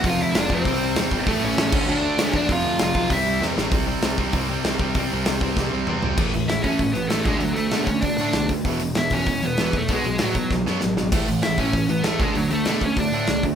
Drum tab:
CC |--------|---x----|--------|--------|
HH |o-o-o-o-|o-o---o-|o-o-o---|o-o-o-o-|
SD |--o---o-|--o---o-|--o---oo|--o---o-|
T2 |--------|--------|--------|--------|
FT |--------|--------|--------|--------|
BD |o--oo--o|o--o---o|o--oo---|o--oo--o|

CC |--------|x-------|--------|--------|
HH |o-o-----|-ooooooo|oooooooo|oooooooo|
SD |--o-o---|--o---o-|--o---o-|--o---o-|
T2 |------o-|--------|--------|--------|
FT |-------o|--------|--------|--------|
BD |o--oo---|o--oo--o|---oo--o|o--oo--o|

CC |--------|x-------|--------|
HH |oooo----|oooooooo|oooooooo|
SD |--o-oooo|--o---o-|--o---o-|
T2 |--------|--------|--------|
FT |--------|--------|--------|
BD |o--oo---|o--oo--o|---oo--o|